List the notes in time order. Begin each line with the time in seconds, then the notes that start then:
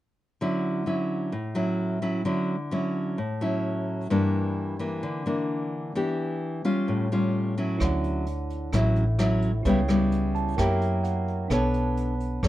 0.41 D3 F#3 C#4 E4
0.86 F#3 C#4 E4
1.32 A2
1.55 F#3 C#4 E4
2.02 F#3 C#4 E4
2.25 D3 F#3 C#4 E4
2.71 F#3 C#4 E4
3.18 A2
3.41 F#3 C#4 E4
4.10 G2 E3 A#3 D4
4.79 E3 A#3 D4
5.03 D3
5.26 E3 A#3 D4
5.95 E3 B3 D4 G4
6.65 G3 C#4 F4
6.88 A2
7.12 G3 C#4 F4
7.58 F#3 C#4 E4
7.79 D2 D3 D4 E4 C#5, kick, cross-stick, closed hi-hat
7.84 F#5
8.04 closed hi-hat
8.26 closed hi-hat
8.50 closed hi-hat
8.73 A1 A2 F#3 C#4 E4, kick, cross-stick, closed hi-hat
8.96 closed hi-hat
9.19 F#3 C#4 E4, cross-stick, closed hi-hat
9.42 closed hi-hat
9.63 C#2 C#3 G3 B3 E4 B4, kick, closed hi-hat
9.67 C#5 G5
9.88 G3 B3 E4, cross-stick, closed hi-hat
10.12 closed hi-hat
10.35 A5, closed hi-hat
10.57 F#2 F#3 A#3 E4 G4 A#4 E5 G5, kick, cross-stick, closed hi-hat
10.61 G5
10.81 closed hi-hat
11.04 F#5, closed hi-hat
11.28 closed hi-hat
11.48 B1 B3 D4 A4 B4 C#5, kick, cross-stick, closed hi-hat
11.54 A5
11.74 closed hi-hat
11.97 closed hi-hat
12.20 closed hi-hat
12.43 F#2 F#3 D4 A4 C#5, kick, cross-stick, closed hi-hat